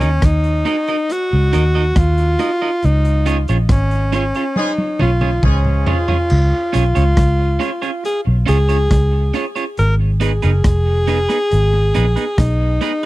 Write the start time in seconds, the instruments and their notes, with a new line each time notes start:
Already playing: tenor saxophone C#4
0.00 fingered electric bass D#2, clean electric guitar D#4 F#4 A#4 D#5, closed hi-hat
0.22 fingered electric bass D#2, tenor saxophone D#4, kick, cross-stick, closed hi-hat
0.44 closed hi-hat
0.65 clean electric guitar D#4 F#4 A#4 D#5, closed hi-hat
0.87 clean electric guitar D#4 F#4 A#4 D#5, closed hi-hat
1.09 tenor saxophone F#4, closed hi-hat
1.33 fingered electric bass C#2
1.53 fingered electric bass D#2, clean electric guitar D#4 F#4 A#4 D#5, closed hi-hat
1.75 clean electric guitar D#4 F#4 A#4 D#5
1.96 fingered electric bass D#2, tenor saxophone F4, kick, cross-stick, closed hi-hat
2.18 closed hi-hat
2.39 clean electric guitar D#4 F#4 A#4 D#5, closed hi-hat
2.62 clean electric guitar D#4 F#4 A#4 D#5
2.82 fingered electric bass C#2, tenor saxophone D#4, closed hi-hat
3.05 closed hi-hat
3.26 clean electric guitar C#4 F4 G#4 C#5, closed hi-hat
3.48 fingered electric bass A#1, clean electric guitar C#4 F4 G#4 C#5, closed hi-hat
3.69 fingered electric bass G#1, tenor saxophone C#4, kick, cross-stick, closed hi-hat
3.91 closed hi-hat
4.12 clean electric guitar C#4 F4 G#4 C#5, tenor saxophone C#4, closed hi-hat
4.34 clean electric guitar C#4 F4 G#4 C#5, closed hi-hat
4.56 horn section F3 G#3 C#4 G#4, tenor saxophone D#4, high tom
4.78 high tom
4.99 fingered electric bass B1, clean electric guitar C#4 F4 G#4 C#5, tenor saxophone F4, mid tom
5.21 clean electric guitar C#4 F4 G#4 C#5, mid tom
5.43 fingered electric bass C#2, horn section F3 G#3 C#4 G#4, tenor saxophone C#4, kick, mid tom
5.65 mid tom
5.87 clean electric guitar C#4 F4 G#4 C#5, tenor saxophone F4, floor tom
6.08 clean electric guitar C#4 F4 G#4 C#5, floor tom
6.30 fingered electric bass C#2, crash
6.73 fingered electric bass B1, clean electric guitar C#4 F4 G#4 C#5, tenor saxophone F4, closed hi-hat
6.95 fingered electric bass C#2, clean electric guitar C#4 F4 G#4 C#5, closed hi-hat
7.17 fingered electric bass C#2, kick, cross-stick, closed hi-hat
7.59 clean electric guitar C#4 F4 G#4 C#5, closed hi-hat
7.82 clean electric guitar C#4 F4 G#4 C#5, closed hi-hat
8.05 tenor saxophone G#4, closed hi-hat
8.27 fingered electric bass B1
8.46 fingered electric bass C#2, clean electric guitar C#4 F4 G#4 C#5, tenor saxophone G#4, closed hi-hat
8.69 clean electric guitar C#4 F4 G#4 C#5, closed hi-hat
8.91 fingered electric bass C#2, kick, cross-stick, closed hi-hat
9.34 clean electric guitar C#4 F4 G#4 C#5, closed hi-hat
9.56 clean electric guitar C#4 F4 G#4 C#5, closed hi-hat
9.77 fingered electric bass G#1, tenor saxophone A#4, closed hi-hat
10.20 clean electric guitar B3 D#4 G#4 B4, tenor saxophone G#4, closed hi-hat
10.42 fingered electric bass F#1, clean electric guitar B3 D#4 G#4 B4, closed hi-hat
10.64 fingered electric bass F1, kick, cross-stick, closed hi-hat
11.08 clean electric guitar B3 D#4 G#4 B4, closed hi-hat
11.29 clean electric guitar B3 D#4 G#4 B4, cross-stick, closed hi-hat
11.51 fingered electric bass G#1, closed hi-hat
11.94 fingered electric bass A#1, clean electric guitar B3 D#4 G#4 B4, closed hi-hat
12.16 clean electric guitar B3 D#4 G#4 B4, closed hi-hat
12.38 fingered electric bass B1, tenor saxophone D#4, kick, cross-stick, closed hi-hat
12.81 clean electric guitar B3 D#4 G#4 B4, closed hi-hat